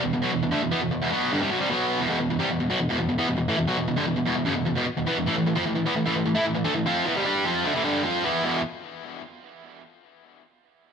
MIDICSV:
0, 0, Header, 1, 3, 480
1, 0, Start_track
1, 0, Tempo, 396563
1, 621, Time_signature, 4, 2, 24, 8
1, 13227, End_track
2, 0, Start_track
2, 0, Title_t, "Distorted electric guitar"
2, 0, Program_c, 0, 30
2, 33, Note_on_c, 0, 40, 61
2, 36, Note_on_c, 0, 47, 66
2, 148, Note_off_c, 0, 40, 0
2, 149, Note_off_c, 0, 47, 0
2, 163, Note_on_c, 0, 40, 70
2, 168, Note_on_c, 0, 47, 69
2, 256, Note_off_c, 0, 47, 0
2, 270, Note_on_c, 0, 47, 95
2, 272, Note_off_c, 0, 40, 0
2, 280, Note_on_c, 0, 54, 100
2, 379, Note_off_c, 0, 47, 0
2, 383, Note_off_c, 0, 54, 0
2, 390, Note_on_c, 0, 40, 69
2, 396, Note_on_c, 0, 47, 76
2, 505, Note_off_c, 0, 40, 0
2, 508, Note_off_c, 0, 47, 0
2, 521, Note_on_c, 0, 47, 77
2, 522, Note_on_c, 0, 40, 69
2, 616, Note_off_c, 0, 47, 0
2, 621, Note_on_c, 0, 50, 95
2, 631, Note_off_c, 0, 40, 0
2, 634, Note_on_c, 0, 57, 109
2, 733, Note_off_c, 0, 50, 0
2, 740, Note_off_c, 0, 57, 0
2, 759, Note_on_c, 0, 40, 66
2, 765, Note_on_c, 0, 47, 79
2, 861, Note_off_c, 0, 47, 0
2, 866, Note_on_c, 0, 52, 103
2, 869, Note_off_c, 0, 40, 0
2, 872, Note_on_c, 0, 59, 104
2, 975, Note_off_c, 0, 52, 0
2, 978, Note_off_c, 0, 59, 0
2, 987, Note_on_c, 0, 40, 64
2, 993, Note_on_c, 0, 47, 70
2, 1091, Note_off_c, 0, 40, 0
2, 1102, Note_off_c, 0, 47, 0
2, 1106, Note_on_c, 0, 40, 65
2, 1116, Note_on_c, 0, 47, 70
2, 1217, Note_off_c, 0, 40, 0
2, 1227, Note_off_c, 0, 47, 0
2, 1231, Note_on_c, 0, 40, 83
2, 1239, Note_on_c, 0, 47, 97
2, 1337, Note_off_c, 0, 40, 0
2, 1339, Note_off_c, 0, 47, 0
2, 1353, Note_on_c, 0, 47, 89
2, 1363, Note_on_c, 0, 54, 97
2, 1372, Note_on_c, 0, 59, 98
2, 1578, Note_off_c, 0, 47, 0
2, 1582, Note_off_c, 0, 54, 0
2, 1587, Note_off_c, 0, 59, 0
2, 1597, Note_on_c, 0, 43, 95
2, 1604, Note_on_c, 0, 50, 99
2, 1700, Note_off_c, 0, 43, 0
2, 1703, Note_off_c, 0, 50, 0
2, 1710, Note_on_c, 0, 48, 91
2, 1724, Note_on_c, 0, 55, 97
2, 1816, Note_off_c, 0, 48, 0
2, 1823, Note_off_c, 0, 55, 0
2, 1826, Note_on_c, 0, 47, 91
2, 1833, Note_on_c, 0, 54, 114
2, 1933, Note_off_c, 0, 47, 0
2, 1937, Note_off_c, 0, 54, 0
2, 1938, Note_on_c, 0, 48, 86
2, 1946, Note_on_c, 0, 55, 93
2, 2048, Note_off_c, 0, 48, 0
2, 2053, Note_off_c, 0, 55, 0
2, 2053, Note_on_c, 0, 47, 86
2, 2065, Note_on_c, 0, 54, 97
2, 2074, Note_on_c, 0, 59, 100
2, 2406, Note_off_c, 0, 47, 0
2, 2412, Note_off_c, 0, 54, 0
2, 2412, Note_on_c, 0, 40, 93
2, 2417, Note_off_c, 0, 59, 0
2, 2421, Note_on_c, 0, 47, 111
2, 2523, Note_off_c, 0, 40, 0
2, 2531, Note_off_c, 0, 47, 0
2, 2538, Note_on_c, 0, 40, 96
2, 2548, Note_on_c, 0, 47, 97
2, 2644, Note_off_c, 0, 40, 0
2, 2647, Note_off_c, 0, 47, 0
2, 2658, Note_on_c, 0, 40, 69
2, 2661, Note_on_c, 0, 47, 81
2, 2776, Note_off_c, 0, 40, 0
2, 2777, Note_off_c, 0, 47, 0
2, 2791, Note_on_c, 0, 40, 69
2, 2792, Note_on_c, 0, 47, 76
2, 2892, Note_off_c, 0, 47, 0
2, 2897, Note_on_c, 0, 48, 88
2, 2902, Note_off_c, 0, 40, 0
2, 2911, Note_on_c, 0, 55, 110
2, 3008, Note_off_c, 0, 48, 0
2, 3015, Note_off_c, 0, 55, 0
2, 3033, Note_on_c, 0, 40, 66
2, 3033, Note_on_c, 0, 47, 73
2, 3135, Note_off_c, 0, 47, 0
2, 3136, Note_off_c, 0, 40, 0
2, 3150, Note_on_c, 0, 40, 58
2, 3150, Note_on_c, 0, 47, 75
2, 3251, Note_off_c, 0, 47, 0
2, 3261, Note_off_c, 0, 40, 0
2, 3265, Note_on_c, 0, 47, 92
2, 3273, Note_on_c, 0, 54, 112
2, 3368, Note_off_c, 0, 47, 0
2, 3375, Note_off_c, 0, 54, 0
2, 3379, Note_on_c, 0, 40, 79
2, 3382, Note_on_c, 0, 47, 80
2, 3485, Note_off_c, 0, 40, 0
2, 3497, Note_off_c, 0, 47, 0
2, 3499, Note_on_c, 0, 40, 90
2, 3513, Note_on_c, 0, 47, 116
2, 3603, Note_off_c, 0, 40, 0
2, 3610, Note_off_c, 0, 47, 0
2, 3618, Note_on_c, 0, 40, 68
2, 3624, Note_on_c, 0, 47, 73
2, 3724, Note_off_c, 0, 40, 0
2, 3728, Note_off_c, 0, 47, 0
2, 3738, Note_on_c, 0, 40, 65
2, 3743, Note_on_c, 0, 47, 81
2, 3845, Note_off_c, 0, 47, 0
2, 3850, Note_on_c, 0, 52, 90
2, 3855, Note_off_c, 0, 40, 0
2, 3862, Note_on_c, 0, 59, 103
2, 3963, Note_off_c, 0, 52, 0
2, 3969, Note_off_c, 0, 59, 0
2, 3974, Note_on_c, 0, 40, 67
2, 3978, Note_on_c, 0, 47, 75
2, 4061, Note_off_c, 0, 40, 0
2, 4074, Note_off_c, 0, 47, 0
2, 4076, Note_on_c, 0, 40, 68
2, 4088, Note_on_c, 0, 47, 74
2, 4203, Note_off_c, 0, 40, 0
2, 4209, Note_off_c, 0, 47, 0
2, 4214, Note_on_c, 0, 45, 91
2, 4225, Note_on_c, 0, 52, 111
2, 4325, Note_off_c, 0, 45, 0
2, 4329, Note_on_c, 0, 40, 73
2, 4330, Note_off_c, 0, 52, 0
2, 4331, Note_on_c, 0, 47, 80
2, 4433, Note_off_c, 0, 47, 0
2, 4448, Note_on_c, 0, 47, 93
2, 4450, Note_off_c, 0, 40, 0
2, 4459, Note_on_c, 0, 54, 102
2, 4562, Note_off_c, 0, 47, 0
2, 4567, Note_off_c, 0, 54, 0
2, 4569, Note_on_c, 0, 40, 61
2, 4578, Note_on_c, 0, 47, 77
2, 4682, Note_off_c, 0, 40, 0
2, 4684, Note_off_c, 0, 47, 0
2, 4697, Note_on_c, 0, 40, 75
2, 4699, Note_on_c, 0, 47, 84
2, 4799, Note_off_c, 0, 40, 0
2, 4803, Note_on_c, 0, 43, 94
2, 4810, Note_off_c, 0, 47, 0
2, 4815, Note_on_c, 0, 50, 114
2, 4916, Note_off_c, 0, 43, 0
2, 4921, Note_on_c, 0, 40, 70
2, 4923, Note_off_c, 0, 50, 0
2, 4928, Note_on_c, 0, 47, 69
2, 5031, Note_off_c, 0, 40, 0
2, 5036, Note_off_c, 0, 47, 0
2, 5045, Note_on_c, 0, 40, 59
2, 5051, Note_on_c, 0, 47, 67
2, 5146, Note_off_c, 0, 40, 0
2, 5159, Note_off_c, 0, 47, 0
2, 5160, Note_on_c, 0, 40, 97
2, 5174, Note_on_c, 0, 47, 99
2, 5273, Note_off_c, 0, 40, 0
2, 5274, Note_off_c, 0, 47, 0
2, 5288, Note_on_c, 0, 40, 79
2, 5289, Note_on_c, 0, 47, 78
2, 5393, Note_off_c, 0, 40, 0
2, 5398, Note_on_c, 0, 42, 93
2, 5402, Note_off_c, 0, 47, 0
2, 5406, Note_on_c, 0, 49, 106
2, 5507, Note_off_c, 0, 42, 0
2, 5512, Note_on_c, 0, 40, 74
2, 5518, Note_off_c, 0, 49, 0
2, 5523, Note_on_c, 0, 47, 71
2, 5632, Note_off_c, 0, 40, 0
2, 5639, Note_off_c, 0, 47, 0
2, 5646, Note_on_c, 0, 40, 70
2, 5654, Note_on_c, 0, 47, 81
2, 5750, Note_off_c, 0, 40, 0
2, 5755, Note_off_c, 0, 47, 0
2, 5765, Note_on_c, 0, 40, 85
2, 5770, Note_on_c, 0, 47, 108
2, 5874, Note_off_c, 0, 40, 0
2, 5882, Note_off_c, 0, 47, 0
2, 6016, Note_on_c, 0, 40, 60
2, 6023, Note_on_c, 0, 47, 66
2, 6125, Note_off_c, 0, 47, 0
2, 6129, Note_on_c, 0, 52, 100
2, 6133, Note_off_c, 0, 40, 0
2, 6142, Note_on_c, 0, 59, 118
2, 6242, Note_off_c, 0, 52, 0
2, 6247, Note_on_c, 0, 40, 76
2, 6248, Note_off_c, 0, 59, 0
2, 6257, Note_on_c, 0, 47, 82
2, 6366, Note_off_c, 0, 47, 0
2, 6369, Note_off_c, 0, 40, 0
2, 6371, Note_on_c, 0, 45, 103
2, 6378, Note_on_c, 0, 52, 110
2, 6473, Note_off_c, 0, 45, 0
2, 6478, Note_off_c, 0, 52, 0
2, 6487, Note_on_c, 0, 45, 69
2, 6493, Note_on_c, 0, 52, 83
2, 6598, Note_off_c, 0, 45, 0
2, 6608, Note_off_c, 0, 52, 0
2, 6613, Note_on_c, 0, 45, 75
2, 6623, Note_on_c, 0, 52, 75
2, 6718, Note_off_c, 0, 45, 0
2, 6723, Note_on_c, 0, 53, 109
2, 6728, Note_off_c, 0, 52, 0
2, 6733, Note_on_c, 0, 60, 108
2, 6839, Note_off_c, 0, 53, 0
2, 6844, Note_off_c, 0, 60, 0
2, 6859, Note_on_c, 0, 45, 70
2, 6859, Note_on_c, 0, 52, 84
2, 6955, Note_off_c, 0, 45, 0
2, 6955, Note_off_c, 0, 52, 0
2, 6969, Note_on_c, 0, 45, 66
2, 6970, Note_on_c, 0, 52, 73
2, 7080, Note_off_c, 0, 52, 0
2, 7090, Note_off_c, 0, 45, 0
2, 7095, Note_on_c, 0, 52, 101
2, 7102, Note_on_c, 0, 59, 115
2, 7206, Note_off_c, 0, 52, 0
2, 7209, Note_off_c, 0, 59, 0
2, 7216, Note_on_c, 0, 45, 68
2, 7218, Note_on_c, 0, 52, 84
2, 7318, Note_off_c, 0, 45, 0
2, 7328, Note_off_c, 0, 52, 0
2, 7333, Note_on_c, 0, 45, 96
2, 7343, Note_on_c, 0, 52, 105
2, 7442, Note_off_c, 0, 52, 0
2, 7445, Note_off_c, 0, 45, 0
2, 7457, Note_on_c, 0, 52, 79
2, 7459, Note_on_c, 0, 45, 65
2, 7558, Note_off_c, 0, 45, 0
2, 7561, Note_off_c, 0, 52, 0
2, 7573, Note_on_c, 0, 45, 71
2, 7576, Note_on_c, 0, 52, 82
2, 7679, Note_off_c, 0, 52, 0
2, 7684, Note_on_c, 0, 57, 86
2, 7692, Note_off_c, 0, 45, 0
2, 7695, Note_on_c, 0, 64, 103
2, 7800, Note_off_c, 0, 57, 0
2, 7806, Note_off_c, 0, 64, 0
2, 7813, Note_on_c, 0, 45, 63
2, 7816, Note_on_c, 0, 52, 76
2, 7908, Note_off_c, 0, 45, 0
2, 7916, Note_off_c, 0, 52, 0
2, 7922, Note_on_c, 0, 45, 66
2, 7931, Note_on_c, 0, 52, 76
2, 8035, Note_off_c, 0, 45, 0
2, 8040, Note_on_c, 0, 50, 96
2, 8043, Note_off_c, 0, 52, 0
2, 8048, Note_on_c, 0, 57, 122
2, 8159, Note_off_c, 0, 50, 0
2, 8163, Note_off_c, 0, 57, 0
2, 8165, Note_on_c, 0, 45, 68
2, 8173, Note_on_c, 0, 52, 85
2, 8289, Note_off_c, 0, 45, 0
2, 8293, Note_off_c, 0, 52, 0
2, 8300, Note_on_c, 0, 53, 92
2, 8305, Note_on_c, 0, 60, 99
2, 8313, Note_on_c, 0, 65, 105
2, 8529, Note_off_c, 0, 53, 0
2, 8532, Note_off_c, 0, 60, 0
2, 8536, Note_off_c, 0, 65, 0
2, 8541, Note_on_c, 0, 52, 104
2, 8549, Note_on_c, 0, 59, 104
2, 8650, Note_off_c, 0, 52, 0
2, 8654, Note_off_c, 0, 59, 0
2, 8666, Note_on_c, 0, 48, 89
2, 8676, Note_on_c, 0, 55, 100
2, 8758, Note_off_c, 0, 55, 0
2, 8772, Note_off_c, 0, 48, 0
2, 8772, Note_on_c, 0, 55, 99
2, 8780, Note_on_c, 0, 62, 102
2, 8787, Note_on_c, 0, 67, 103
2, 9006, Note_off_c, 0, 55, 0
2, 9010, Note_off_c, 0, 62, 0
2, 9013, Note_off_c, 0, 67, 0
2, 9017, Note_on_c, 0, 53, 91
2, 9029, Note_on_c, 0, 60, 101
2, 9034, Note_on_c, 0, 65, 106
2, 9249, Note_off_c, 0, 53, 0
2, 9254, Note_off_c, 0, 60, 0
2, 9256, Note_on_c, 0, 50, 95
2, 9257, Note_off_c, 0, 65, 0
2, 9265, Note_on_c, 0, 57, 109
2, 9368, Note_off_c, 0, 50, 0
2, 9372, Note_off_c, 0, 57, 0
2, 9373, Note_on_c, 0, 45, 97
2, 9382, Note_on_c, 0, 52, 108
2, 9483, Note_off_c, 0, 45, 0
2, 9483, Note_on_c, 0, 43, 96
2, 9488, Note_on_c, 0, 50, 103
2, 9491, Note_off_c, 0, 52, 0
2, 9498, Note_on_c, 0, 55, 105
2, 9722, Note_off_c, 0, 43, 0
2, 9723, Note_off_c, 0, 50, 0
2, 9728, Note_on_c, 0, 53, 100
2, 9729, Note_off_c, 0, 55, 0
2, 9737, Note_on_c, 0, 60, 101
2, 9742, Note_on_c, 0, 65, 105
2, 9965, Note_off_c, 0, 53, 0
2, 9969, Note_off_c, 0, 60, 0
2, 9972, Note_off_c, 0, 65, 0
2, 9976, Note_on_c, 0, 52, 109
2, 9982, Note_on_c, 0, 59, 105
2, 9989, Note_on_c, 0, 64, 104
2, 10209, Note_off_c, 0, 52, 0
2, 10212, Note_off_c, 0, 59, 0
2, 10214, Note_on_c, 0, 40, 92
2, 10216, Note_off_c, 0, 64, 0
2, 10218, Note_on_c, 0, 47, 108
2, 10227, Note_on_c, 0, 52, 104
2, 10407, Note_off_c, 0, 40, 0
2, 10410, Note_off_c, 0, 47, 0
2, 10414, Note_off_c, 0, 52, 0
2, 13227, End_track
3, 0, Start_track
3, 0, Title_t, "Muted distorted electric guitar strokes"
3, 5889, Note_on_c, 9, 29, 61
3, 6010, Note_off_c, 9, 29, 0
3, 13227, End_track
0, 0, End_of_file